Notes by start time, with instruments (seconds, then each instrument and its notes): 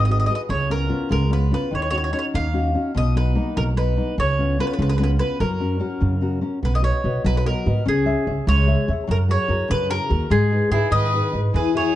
Already playing: upright bass G#1, nylon-string guitar D#3
0.05 mandolin D#5
0.09 nylon-string guitar F#4 G#4 B4, mandolin D#5
0.20 mandolin D#5
0.26 nylon-string guitar F#4 G#4 B4, mandolin D#5
0.35 mandolin D#5
0.49 upright bass C#2, nylon-string guitar C#3, mandolin C#5
0.70 nylon-string guitar B3 C#4 F4, mandolin A#4
0.89 nylon-string guitar B3 C#4 F4
1.09 upright bass C#2, nylon-string guitar G#3, mandolin A#4
1.30 nylon-string guitar B3 C#4 F4, mandolin B4
1.51 nylon-string guitar B3 C#4 F4, mandolin B4
1.71 upright bass D#2, nylon-string guitar D#3
1.75 mandolin C#5
1.82 mandolin C#5
1.90 nylon-string guitar C#4 D#4 F#4, mandolin C#5
1.98 mandolin C#5
2.04 mandolin C#5
2.12 nylon-string guitar C#4 D#4 F#4, mandolin C#5
2.19 mandolin C#5
2.34 upright bass D#2, nylon-string guitar A#3, mandolin F5
2.53 nylon-string guitar C#4 D#4 F#4
2.74 nylon-string guitar C#4 D#4 F#4
2.95 upright bass B1, nylon-string guitar B2, mandolin D#5
3.15 nylon-string guitar F#3 B3 D#4, mandolin B4
3.35 nylon-string guitar A#3 B3 D#4
3.57 upright bass B1, nylon-string guitar F#3, mandolin A#4
3.76 nylon-string guitar F#3 B3 D#4, mandolin B4
3.97 nylon-string guitar A#3 B3 D#4
4.18 upright bass C#2, nylon-string guitar C#3, mandolin C#5
4.39 nylon-string guitar B3 C#4 F4
4.59 nylon-string guitar B3 C#4 F4, mandolin B4
4.67 mandolin B4
4.74 mandolin B4
4.79 upright bass C#2, nylon-string guitar G#3, mandolin B4
4.89 mandolin B4
4.98 nylon-string guitar B3 C#4 F4, mandolin B4
5.04 mandolin B4
5.19 nylon-string guitar B3 C#4 F4, mandolin B4
5.40 upright bass F#2, nylon-string guitar F#3, mandolin A#4
5.60 nylon-string guitar C#4 F#4 A#4
5.80 nylon-string guitar C#4 F#4 A#4
6.01 upright bass F#2, nylon-string guitar C#3
6.21 nylon-string guitar C#4 F#4 A#4
6.41 nylon-string guitar C#4 F#4 A#4
6.63 upright bass B1, nylon-string guitar B3, mandolin B4
6.75 mandolin D#5
6.82 nylon-string guitar F#4 B4 D#5, mandolin C#5
7.04 upright bass B1, nylon-string guitar F#4 B4 D#5
7.24 upright bass B1, nylon-string guitar F#3, mandolin B4
7.37 mandolin B4
7.45 nylon-string guitar B3 F#4 D#5, mandolin A#4
7.66 upright bass G#2, nylon-string guitar F#4 B4 D#5
7.85 upright bass C#2, nylon-string guitar C#4, mandolin G#4
8.05 nylon-string guitar G#4 C#5 E5
8.27 upright bass C#2, nylon-string guitar G#4 C#5 E5
8.47 upright bass C#2, nylon-string guitar G#3, mandolin C#5
8.67 nylon-string guitar G#4 C#5 E5
8.88 upright bass E2, nylon-string guitar G#4 C#5 E5
9.07 upright bass F#2, nylon-string guitar F#3, mandolin A#4
9.29 nylon-string guitar F#4 G#4 A#4, mandolin C#5
9.48 upright bass F#2, nylon-string guitar F#4 G#4 A#4
9.68 upright bass F#2, nylon-string guitar C#3, mandolin B4
9.90 nylon-string guitar F#4 G#4 A#4, mandolin A#4
10.09 upright bass D#2, nylon-string guitar F#4 G#4 A#4
10.30 upright bass G#2, nylon-string guitar G#3, mandolin G#4
10.51 nylon-string guitar D#4 G#4 B4
10.71 upright bass G#2, nylon-string guitar D#4 G#4 B4, violin E4, mandolin G#4
10.91 upright bass G#2, nylon-string guitar D#3, violin B4, mandolin D#5
11.14 nylon-string guitar D#4 G#4 B4
11.33 upright bass G#2, nylon-string guitar D#4 G#4 B4
11.54 upright bass E2, nylon-string guitar E3, violin G#4, mandolin B4
11.75 nylon-string guitar E4 F#4 G#4, violin G#4, mandolin C#5